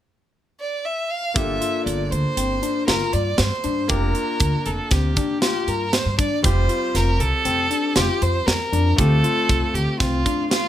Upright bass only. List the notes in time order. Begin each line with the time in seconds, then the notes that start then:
1.36 G1
1.86 G1
2.12 D2
2.37 G1
2.88 G1
3.14 G2
3.39 G2
3.65 G2
3.89 F1
4.40 D2
4.66 F1
4.91 D2
5.67 G2
6.06 G2
6.44 F1
6.95 F1
7.20 C2
7.45 F1
7.96 F1
8.22 F2
8.47 F2
8.73 F2
8.99 D2
9.50 C2
9.74 D2
10.00 C2